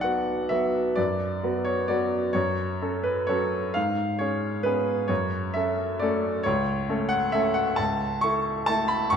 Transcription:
Already playing: B1 D5
0.01 B3 F#4 F#5
0.49 F#3 B3 F#4 E5
0.95 F#2 D5
1.43 F#3 B3 F#4
1.65 C#5
1.88 F#3 B3 F#4 D5
2.33 F#2 C#5
2.82 C#4 A4
3.04 B4
3.27 F#3 C#4 A4 C#5
3.74 G#2 F5
4.19 C#4 G#4 C#5
4.63 B3 C#4 G#4 B4
5.08 F#2 C#5
5.54 C#4 A4 E5
5.99 A3 C#4 A4 D5
6.43 C#2 C#5
6.89 A3 C#4 A4
7.09 F#5
7.32 A3 C#4 A4 E5
7.54 F#5
7.76 C#2 A5
8.21 E4 A4 C#6
8.66 A3 E4 A4 A5
8.88 B5
9.10 C#2 C#6

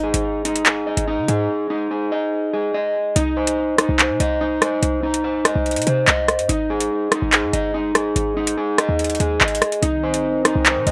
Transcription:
Already playing: G#1 D#4
0.03 G#4
0.14 G#1, closed hi-hat
0.45 D#4, closed hi-hat
0.56 closed hi-hat
0.66 G#4, clap, closed hi-hat
0.87 D#5
0.97 G#1, closed hi-hat
1.08 D#4
1.18 D#3
1.28 G#2 G#4, closed hi-hat
1.70 D#4
1.91 G#4
2.12 D#5
2.53 G#4
2.74 D#5
3.16 C2 D#4, closed hi-hat
3.37 C5
3.47 closed hi-hat
3.78 D#4, cross-stick, closed hi-hat
3.89 C2
3.99 C5, clap, closed hi-hat
4.10 C3
4.20 C2 D#5, closed hi-hat
4.41 D#4
4.62 C5, cross-stick, closed hi-hat
4.83 C2, closed hi-hat
5.03 D#4
5.14 closed hi-hat
5.24 C5
5.45 D#5, cross-stick, closed hi-hat
5.56 C2
5.66 closed hi-hat
5.71 closed hi-hat
5.76 C3, closed hi-hat
5.82 closed hi-hat
5.87 C3 C5, closed hi-hat
6.08 C2 D#5, clap, closed hi-hat
6.28 cross-stick, closed hi-hat
6.39 G2, closed hi-hat
6.49 G#1 D#4, closed hi-hat
6.70 G#4
6.80 closed hi-hat
7.12 D#4, cross-stick, closed hi-hat
7.22 G#1
7.33 G#4, clap, closed hi-hat
7.43 G#2
7.53 G1 D#5, closed hi-hat
7.74 D#4
7.95 G#4, cross-stick, closed hi-hat
8.16 G#1, closed hi-hat
8.37 D#4
8.47 closed hi-hat
8.57 G#4
8.78 D#5, cross-stick, closed hi-hat
8.89 D#2
8.99 closed hi-hat
9.04 closed hi-hat
9.10 closed hi-hat
9.15 closed hi-hat
9.20 D#2 G#4, closed hi-hat
9.41 G#1 D#5, clap, closed hi-hat
9.48 closed hi-hat
9.55 closed hi-hat
9.62 cross-stick, closed hi-hat
9.72 closed hi-hat
9.82 C2 D#3 C4 D#4, closed hi-hat
10.03 C5
10.14 closed hi-hat
10.45 D#4, cross-stick, closed hi-hat
10.55 C2
10.66 C5, clap, closed hi-hat
10.76 C3
10.87 C2 D#5, closed hi-hat

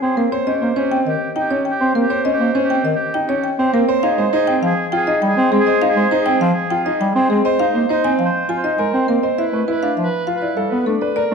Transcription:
0.02 C4 G#4 C5
0.17 A#3 C4 A#4
0.32 C5 C#5
0.47 C#4 G4 D#5
0.62 A#3 C5
0.76 C#4 G4 C5
0.91 C4 G5
1.06 D#3 G4 D#5
1.36 D#4 G5
1.40 G4
1.51 C#4 C#5
1.65 G5
1.71 G4
1.81 C4 C5
1.95 A#3 C4 A#4
2.02 G4
2.10 C5 C#5
2.25 C#4 D#5
2.34 G4
2.40 A#3 C5
2.55 C#4 C5
2.64 G4
2.70 C4 G5
2.85 D#3 D#5
2.95 G4
3.14 D#4 G5
3.27 C#4 G4 C#5
3.44 G5
3.58 C4 G4 C5
3.74 A#3 C4 A#4
3.89 C5 C#5
4.03 D#4 G#4 F5
4.18 G#3 C5
4.33 D#4 G#4 C5
4.47 C4 G5
4.63 F3 G#4 F5
4.92 F4 G5
4.97 G#4
5.07 D#4 D#5
5.22 G3 G5
5.28 G#4
5.37 C4 C5
5.52 G#3 C4 G#4
5.60 G#4
5.67 C5 D#5
5.82 D#4 F5
5.90 G#4
5.96 G#3 C5
6.11 D#4 C5
6.21 G#4
6.26 C4 G5
6.41 F3 F5
6.53 G#4
6.70 F4 G5
6.83 D#4 G#4 D#5
7.01 G3 G5
7.14 C4 G#4 C5
7.30 G#3 C4 G#4
7.45 C5 D#5
7.59 D#4 C5 F5
7.75 A#3 C5
7.89 D#4 C5
8.04 C4 G#5
8.19 F3 F5
8.25 C5
8.49 F4 G#5
8.58 C5
8.64 D#4 D#5
8.79 G#3 A#4 G#5
8.91 C4 C5
9.08 A#3 C4 A#4
9.23 C5 D#5
9.38 E4 B4 E5
9.53 A3 B4
9.68 E4 B4
9.83 D4 F5
9.97 F3 E5
10.04 B4
10.27 F4 F5
10.36 B4
10.42 E4 D5
10.57 G3 A4 F5
10.69 B3 B4
10.86 A3 D4 A4
11.01 B4 D5
11.16 A#4 D5

